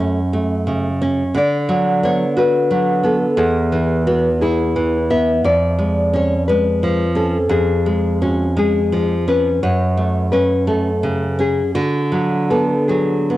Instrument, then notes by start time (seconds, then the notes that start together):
nylon-string guitar
Already playing: F#2 A3 F#4
0.00 C#4
0.33 A3
0.67 C#3
1.01 C#4
1.34 D3 D5
1.69 F#3
2.03 B3 C#5
2.37 F#4 B4
2.71 F#3
3.03 B3 A4
3.37 E2 G#4
3.72 E3
4.07 B3 F#4
4.41 E4 G#4
4.76 E3
5.10 B3 E5
5.45 F2 D5
5.79 G#3
6.13 C#4 C#5
6.48 G#3 B4
6.83 F3
7.15 C#4 A4
7.49 F2 G#4
7.86 G#3
8.22 C#4 F#4
8.57 G#3 G#4
8.92 F3
9.28 C#4 B4
9.63 F#2 C#5
9.97 A3
10.32 C#4 B4
10.67 A3 A4
11.03 C#3
11.39 C#4 G#4
11.75 D3 F#4
12.12 F#3
12.50 B3 A4
12.88 F#3 G#4
13.30 B3